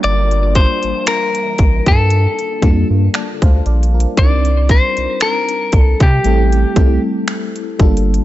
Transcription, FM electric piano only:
0.00 1.43 G3 medium
0.00 1.44 A#3 medium
0.00 1.44 D4 medium
0.00 1.44 F4 medium
0.00 1.45 A#4 loud
2.61 4.06 G3 medium
2.61 4.06 A#3 medium
2.61 4.06 D4 medium
2.61 3.14 F4 medium
2.61 3.15 A4 medium
3.14 3.41 D5 medium
3.14 3.41 A5 medium
3.42 3.65 C5 medium
3.42 3.65 F5 medium
3.66 3.93 A4 medium
3.66 3.93 D5 medium
3.94 4.43 F4 medium
3.94 4.18 A#4 medium
4.17 6.09 G3 medium
4.17 6.09 C4 medium
4.17 6.10 D4 medium
4.17 6.10 D#4 medium
4.17 6.10 A#4 medium
6.24 6.72 G3 medium
6.24 6.72 A3 medium
6.24 6.73 C4 medium
6.24 6.73 E4 medium
6.24 6.73 A4 medium
6.75 7.78 G3 medium
6.75 7.79 A3 medium
6.75 7.80 C4 medium
6.75 7.80 E4 medium
6.75 7.80 A4 medium
7.79 8.24 G3 medium
7.79 8.24 A#3 medium
7.79 8.24 D4 medium
7.79 8.24 F4 medium
7.79 8.24 A4 loud

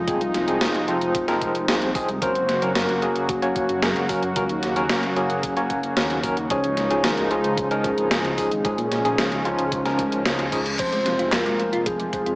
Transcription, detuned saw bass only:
0.08 0.18 D#1 loud
0.21 0.31 C2 medium
0.34 0.44 C2 medium
0.48 0.58 C2 medium
0.61 0.71 F1 loud
0.74 0.85 F1 medium
0.88 0.98 F1 loud
1.01 1.11 F1 medium
1.15 1.25 F1 loud
1.28 1.38 F1 medium
1.41 1.52 F1 loud
1.55 1.65 F1 medium
1.68 1.78 C2 loud
1.82 1.92 C2 medium
1.95 2.05 C2 medium
2.09 2.19 C2 medium
2.22 2.32 F#1 loud
2.35 2.45 F#1 medium
2.49 2.59 F#1 medium
2.62 2.72 F#1 medium
2.76 2.86 F#2 loud
2.89 2.99 F#1 medium
3.02 3.12 F#1 medium
3.16 3.26 F#1 medium
3.29 3.39 F#1 loud
3.42 3.53 F#1 medium
3.56 3.66 F#1 loud
3.69 3.79 F#2 medium
3.83 3.93 F#2 loud
3.96 4.06 F#1 medium
4.09 4.19 F#1 loud
4.23 4.33 F#2 medium
4.36 4.46 C#2 loud
4.49 4.60 D#2 medium
4.63 4.73 D#2 loud
4.76 4.86 D#2 medium
4.90 5.00 F#1 loud
5.03 5.13 F#1 medium
5.17 5.27 F#1 medium
5.30 5.40 F#1 medium
5.43 5.53 F#1 loud
5.57 5.67 F#1 medium
5.70 5.80 F#1 loud
5.84 5.94 F#1 medium
5.97 6.07 D#2 loud
6.10 6.20 D#2 medium
6.24 6.34 D#2 loud
6.37 6.47 D#2 medium
6.50 6.61 C#2 loud
6.64 6.74 C#2 medium
6.77 6.87 C#2 loud
6.91 7.01 C#2 medium
7.04 7.14 G#1 loud
7.17 7.28 C#2 medium
7.31 7.41 C#2 medium
7.44 7.54 C#2 medium
7.58 7.68 C#2 loud
7.71 7.81 C#2 medium
7.84 7.94 C#2 medium
7.98 8.08 G#1 medium
8.11 8.21 G#1 loud
8.24 8.35 C#2 medium
8.38 8.48 C#2 loud
8.51 8.61 G#1 medium
8.65 8.75 G#1 loud
8.78 8.88 A#2 medium
8.92 9.02 A#2 medium
9.05 9.15 A#2 medium
9.18 9.28 C#2 loud
9.32 9.42 C#2 medium
9.45 9.55 C#2 loud
9.59 9.69 C#2 medium
9.72 9.82 C#2 loud
9.85 9.95 C#2 medium
9.99 10.09 C#2 medium
10.12 10.22 C#2 medium
10.26 10.36 C#2 loud
10.39 10.49 C#2 medium
10.52 10.62 C#2 loud
10.66 10.76 C#2 medium
10.79 10.89 F1 loud
10.92 11.02 F1 medium
11.06 11.16 F1 loud
11.19 11.29 F1 medium
11.32 11.43 F2 loud
11.46 11.56 F1 medium
11.59 11.69 F1 loud
11.73 11.83 F1 medium
11.86 11.96 F1 loud
12.00 12.10 F1 medium
12.13 12.23 F1 medium
12.26 12.35 F2 medium

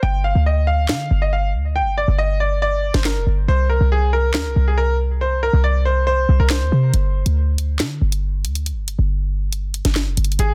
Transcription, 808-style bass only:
0.03 0.34 G1 loud
0.35 0.91 D2 loud
0.89 1.10 D3 loud
1.11 1.55 G1 loud
1.54 1.82 D2 loud
1.81 2.07 G1 loud
2.08 2.91 G1 loud
2.94 3.17 G1 loud
3.16 3.26 F1 loud
3.27 3.47 G1 loud
3.48 3.79 C2 loud
3.81 4.36 C2 loud
4.35 4.47 D#2 loud
4.45 4.56 C2 loud
4.56 5.49 C2 loud
5.53 6.26 C2 loud
6.29 6.39 C2 loud
6.40 6.63 C2 loud
6.61 6.71 D#2 loud
6.72 6.93 C3 loud
6.94 7.25 G1 loud
7.26 7.81 D2 loud
7.80 8.00 D3 loud
8.01 8.46 G1 loud
8.45 8.73 D2 loud
8.72 8.97 G1 loud
8.99 9.81 G1 loud
9.85 10.08 G1 loud
10.07 10.17 F1 loud
10.17 10.38 G1 loud
10.39 10.54 G#1 loud

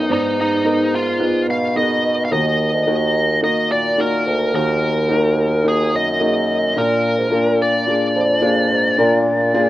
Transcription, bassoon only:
0.09 0.61 G#2 medium
0.65 1.44 G#2 medium
1.48 2.27 B2 medium
2.31 2.70 D#2 medium
2.73 2.86 D2 medium
2.86 3.40 D#2 medium
3.70 4.22 A#2 medium
4.26 4.52 D2 medium
4.54 5.06 D#2 loud
5.10 5.89 D#2 loud
5.94 6.73 F#2 medium
6.76 7.15 A#2 medium
7.18 7.34 G#2 medium
7.32 7.85 A#2 medium
8.15 8.67 F2 medium
8.71 8.97 G#2 medium
8.99 9.50 A#2 loud
9.54 9.69 A#2 medium

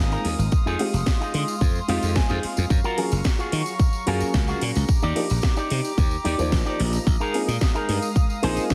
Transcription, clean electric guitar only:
0.11 0.25 D#4 medium
0.11 0.25 G#4 medium
0.11 0.25 A#4 medium
0.39 muted clean electric guitar stroke soft
0.66 0.86 D#4 loud
0.66 0.87 F4 loud
0.66 0.87 G#4 loud
1.07 muted clean electric guitar stroke soft
1.21 1.55 D#4 medium
1.21 1.55 F4 medium
1.21 1.55 G#4 medium
1.88 2.09 D#4 loud
1.88 2.09 F4 loud
1.88 2.10 G4 loud
1.88 2.14 F5 medium
2.16 2.67 G#5 medium
2.30 2.43 D#4 medium
2.30 2.43 F4 medium
2.30 2.44 G#4 medium
2.57 muted clean electric guitar stroke soft
2.84 3.05 F4 loud
2.84 3.05 F#4 loud
2.84 3.05 A#4 loud
3.25 muted clean electric guitar stroke soft
3.39 3.73 F4 medium
3.39 3.73 F#4 medium
3.39 3.73 G#4 medium
4.07 4.27 F4 loud
4.07 4.28 F#4 loud
4.07 4.28 A#4 loud
4.48 4.61 F4 medium
4.48 4.62 F#4 medium
4.48 4.62 G#4 medium
4.75 muted clean electric guitar stroke soft
5.02 5.23 D#4 loud
5.02 5.23 G4 loud
5.02 5.23 D5 loud
5.43 muted clean electric guitar stroke soft
5.56 5.91 D#4 medium
5.56 5.91 G4 medium
5.56 5.91 D5 medium
6.24 6.45 D#4 loud
6.24 6.46 G4 loud
6.24 6.46 D5 loud
6.65 6.79 D#4 medium
6.65 6.80 G4 medium
6.65 6.80 D5 medium
6.93 muted clean electric guitar stroke soft
7.20 7.41 D#4 loud
7.20 7.41 G#4 loud
7.20 7.41 A#4 loud
7.61 muted clean electric guitar stroke soft
7.74 8.09 D#4 medium
7.74 8.09 G#4 medium
7.74 8.09 A#4 medium
8.42 8.63 D#4 loud
8.42 8.64 G#4 loud
8.42 8.64 C5 loud

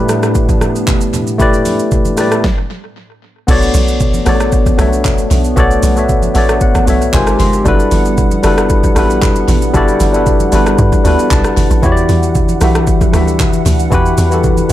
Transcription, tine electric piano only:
0.00 1.38 A3 loud
0.00 1.39 E4 loud
0.00 1.40 G4 loud
0.00 1.41 B4 loud
0.00 1.42 D5 loud
0.00 0.55 E5 loud
1.38 2.02 A3 loud
1.38 2.03 E4 loud
1.38 2.03 G4 loud
1.38 2.03 B4 loud
1.38 2.04 D5 loud
2.17 2.43 A3 medium
2.17 2.44 E4 medium
2.17 2.44 G4 medium
2.17 2.45 B4 medium
2.17 2.45 D5 medium
3.47 4.11 B3 loud
3.47 4.11 F#4 loud
3.47 4.12 A4 loud
3.47 4.12 C#5 loud
3.47 4.13 D5 loud
4.25 4.68 B3 medium
4.25 4.69 F#4 medium
4.25 4.69 A4 medium
4.25 4.70 C#5 medium
4.25 4.70 D5 loud
4.78 5.41 B3 medium
4.78 5.42 F#4 medium
4.78 5.42 A4 medium
4.78 5.43 C#5 medium
4.78 5.43 E5 loud
5.56 5.88 B3 loud
5.56 5.88 F#4 loud
5.56 5.89 A4 loud
5.56 5.89 C#5 loud
5.56 5.90 D5 loud
5.96 6.27 B3 medium
5.96 6.28 F#4 medium
5.96 6.28 A4 medium
5.96 6.29 C#5 medium
5.96 6.29 E5 medium
6.34 6.77 B3 medium
6.34 6.77 F#4 medium
6.34 6.78 A4 medium
6.34 6.78 C#5 medium
6.34 6.79 D5 loud
6.34 6.60 E5 medium
6.62 7.10 F#5 medium
6.86 7.13 B3 medium
6.86 7.13 F#4 medium
6.86 7.14 A4 medium
6.86 7.14 C#5 medium
6.86 7.15 E5 loud
7.12 7.55 G#3 loud
7.12 7.56 D#4 medium
7.12 7.56 F4 medium
7.12 7.56 G4 medium
7.12 7.57 A#4 medium
7.12 7.57 C5 loud
7.12 7.38 G#5 medium
7.40 7.64 C6 medium
7.64 8.28 G3 loud
7.64 8.29 D4 loud
7.64 8.29 E4 loud
7.64 8.29 F#4 loud
7.64 8.30 A4 loud
7.64 8.30 B4 loud
8.43 8.86 G3 medium
8.43 8.86 D4 medium
8.43 8.86 E4 medium
8.43 8.87 F#4 medium
8.43 8.87 A4 medium
8.43 8.87 B4 loud
8.95 9.59 G3 medium
8.95 9.59 D4 medium
8.95 9.59 E4 medium
8.95 9.60 F#4 medium
8.95 9.60 A4 medium
8.95 9.61 B4 loud
9.73 10.05 G3 loud
9.73 10.06 D4 loud
9.73 10.06 E4 loud
9.73 10.06 F#4 loud
9.73 10.07 A4 loud
9.73 10.07 D5 loud
10.13 10.45 G3 medium
10.13 10.45 D4 medium
10.13 10.45 E4 medium
10.13 10.46 F#4 medium
10.13 10.46 A4 medium
10.13 10.47 B4 medium
10.51 10.94 G3 medium
10.51 10.95 D4 medium
10.51 10.95 E4 medium
10.51 10.95 F#4 medium
10.51 10.96 A4 medium
10.51 10.96 B4 loud
11.04 11.67 G3 medium
11.04 11.68 D4 medium
11.04 11.68 E4 medium
11.04 11.68 F#4 medium
11.04 11.69 A4 medium
11.04 11.69 B4 loud
11.32 11.80 A5 medium
11.82 12.46 E3 loud
11.82 12.46 E4 loud
11.82 12.47 F#4 loud
11.82 12.47 G4 loud
11.82 11.91 C#5 loud
11.92 12.51 D5 loud
12.60 13.03 E3 medium
12.60 13.03 E4 medium
12.60 13.04 F#4 medium
12.60 13.04 G4 medium
12.60 13.05 E5 loud
13.12 13.76 E3 medium
13.12 13.76 E4 medium
13.12 13.77 F#4 medium
13.12 13.77 G4 medium
13.12 13.78 E5 loud
13.91 14.23 E3 loud
13.91 14.23 E4 loud
13.91 14.24 F#4 loud
13.91 14.24 G4 loud
13.91 14.25 B4 loud
14.30 14.62 E3 medium
14.30 14.62 E4 medium
14.30 14.63 F#4 medium
14.30 14.63 G4 medium
14.30 14.64 A4 medium
14.69 14.72 E3 medium

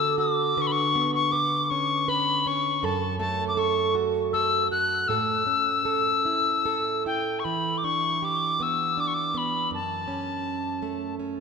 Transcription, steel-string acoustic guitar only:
0.00 0.57 D3 medium
0.00 0.95 B3 soft
0.00 0.18 F#4 medium
0.00 0.56 A4 medium
0.18 1.71 F#4 medium
0.57 2.81 D3 medium
0.57 1.32 B4 medium
0.95 2.89 B3 medium
1.33 2.07 B4 medium
1.71 2.46 C#4 medium
2.08 2.81 B4 medium
2.46 3.94 C#4 medium
2.83 5.09 F#2 medium
2.83 3.57 A4 medium
3.20 5.46 A3 medium
3.57 4.33 A4 medium
3.95 4.70 F#4 medium
4.34 5.10 A4 medium
4.71 5.16 F#4 medium
5.09 7.46 A2 medium
5.09 5.84 A4 medium
5.47 7.53 C#4 soft
5.85 6.64 A4 medium
6.25 7.06 E4 soft
6.66 7.53 A4 medium
7.06 7.84 E4 soft
7.45 9.74 E3 medium
7.84 8.96 D4 soft
8.22 9.78 G4 medium
8.60 9.33 B3 soft
8.97 9.78 D4 soft
9.34 9.78 B3 soft
9.71 11.40 F#2 medium
10.08 11.19 C#4 soft
10.82 11.40 A3 medium
11.19 11.40 C#4 soft

